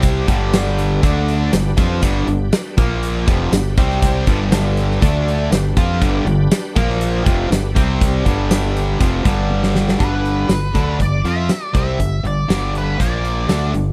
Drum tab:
HH |x-x-x-x-x-x-x-x-|x-x-x-x-x-x-x-x-|x-x-x-x-x-x-x-x-|x-x-x-x-x-x-x-x-|
TB |----x-------x---|----x-------x---|----x-------x---|----x-------x---|
SD |----o-------o---|----o-------o--o|----o--o----o---|----o--o----o---|
T1 |----------------|----------------|----------------|----------------|
BD |o-o-----o-----o-|o-----o---o---o-|o-o-----o-----o-|o-----o---o---o-|

HH |x-x-x-x-x-x-----|x-x-x-x-x-x-x-x-|x-x-x-x-x-x-x-x-|
TB |----x-----------|----x-------x---|----x-------x---|
SD |----o--------ooo|----o-------o---|----o-------o---|
T1 |------------o---|----------------|----------------|
BD |o-o-----o-o-----|o-----o-o-----o-|o-------o-------|